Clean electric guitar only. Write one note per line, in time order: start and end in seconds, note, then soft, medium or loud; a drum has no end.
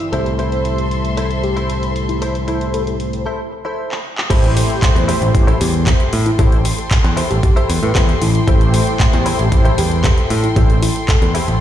0.12 0.26 E4 medium
0.12 0.26 A4 medium
0.12 0.26 C5 medium
0.39 0.78 E4 medium
0.39 0.78 A4 medium
0.39 0.78 C5 medium
1.17 1.31 E4 medium
1.17 1.31 A4 medium
1.17 1.31 C5 medium
1.43 muted clean electric guitar stroke soft
1.56 1.89 E4 medium
1.56 1.89 A4 medium
1.56 1.89 C5 medium
2.22 2.35 E4 medium
2.22 2.35 A4 medium
2.22 2.35 C5 loud
2.48 2.87 E4 medium
2.48 2.87 A4 medium
2.48 2.87 C5 medium
3.26 3.39 E4 medium
3.26 3.39 A4 medium
3.26 3.39 C5 medium
3.52 muted clean electric guitar stroke soft
3.65 3.98 E4 medium
3.65 3.98 A4 medium
3.65 3.98 C5 medium
4.30 4.43 E4 loud
4.30 4.44 G4 loud
4.30 4.43 A4 loud
4.30 4.44 C5 loud
4.56 muted clean electric guitar stroke medium
4.69 muted clean electric guitar stroke soft
4.95 muted clean electric guitar stroke soft
5.08 5.28 E4 medium
5.08 5.28 G4 medium
5.08 5.28 A4 medium
5.08 5.28 C5 loud
5.47 5.61 E4 loud
5.47 5.61 G4 medium
5.47 5.61 A4 loud
5.47 5.61 C5 loud
5.74 muted clean electric guitar stroke soft
5.87 6.13 E4 medium
5.87 6.13 G4 medium
5.87 6.13 A4 medium
5.87 6.13 C5 loud
6.39 6.52 E4 loud
6.39 6.52 G4 medium
6.39 6.52 A4 loud
6.39 6.52 C5 loud
6.65 muted clean electric guitar stroke medium
6.78 muted clean electric guitar stroke soft
7.04 muted clean electric guitar stroke soft
7.17 7.37 E4 medium
7.17 7.37 G4 medium
7.17 7.37 A4 medium
7.17 7.37 C5 loud
7.56 7.69 E4 loud
7.56 7.69 G4 loud
7.56 7.69 A4 loud
7.56 7.69 C5 loud
7.83 muted clean electric guitar stroke soft
7.95 8.21 E4 medium
7.95 8.21 G4 medium
7.95 8.21 A4 medium
7.95 8.21 C5 medium
8.47 8.61 E4 loud
8.47 8.61 G4 loud
8.47 8.61 A4 loud
8.47 8.61 C5 loud
8.73 muted clean electric guitar stroke loud
8.87 muted clean electric guitar stroke soft
9.13 muted clean electric guitar stroke soft
9.26 9.46 E4 medium
9.26 9.46 G4 medium
9.26 9.46 A4 medium
9.26 9.46 C5 medium
9.65 9.78 E4 loud
9.65 9.78 G4 medium
9.65 9.78 A4 loud
9.65 9.78 C5 loud
9.92 muted clean electric guitar stroke soft
10.04 10.30 E4 medium
10.04 10.30 G4 medium
10.04 10.30 A4 medium
10.04 10.30 C5 loud
10.56 10.70 E4 loud
10.56 10.70 G4 loud
10.56 10.70 A4 loud
10.56 10.70 C5 loud
10.82 muted clean electric guitar stroke loud
10.96 muted clean electric guitar stroke soft
11.22 muted clean electric guitar stroke soft
11.34 11.54 E4 loud
11.34 11.55 G4 medium
11.34 11.55 A4 medium
11.34 11.55 C5 medium